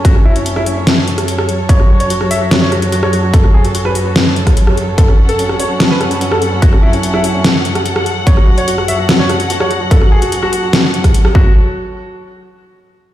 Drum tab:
HH |x--xx-o-x-xxx-x-|x--xx-o-x-xxx-x-|x--xx-o-x-xxx-x-|x--xx-o-x-xxx-x-|
SD |-r---r--o--r-r--|-r---r--o-r--r--|-r---r--o--r-r--|-r---r--o-r--r--|
BD |o---------------|o---------------|o----------o----|o---------------|

HH |x--xx-o-x-xxx-x-|x--xx-o-x-xxx-x-|x--xx-o-x-xxx---|----------------|
SD |-r---r--o--r-r--|-r---r--o-r--r--|-r---r--o--r-r--|----------------|
BD |o---------------|o---------------|o----------o--o-|----------------|